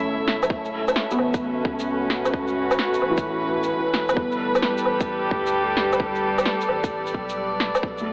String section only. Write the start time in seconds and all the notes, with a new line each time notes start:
Already playing: A2 A3 E4 C#5 E5
0.50 C#4
0.96 B4
1.09 F#4
4.17 G3
4.36 A4
4.55 G4
5.54 D5
7.83 B2
8.06 B3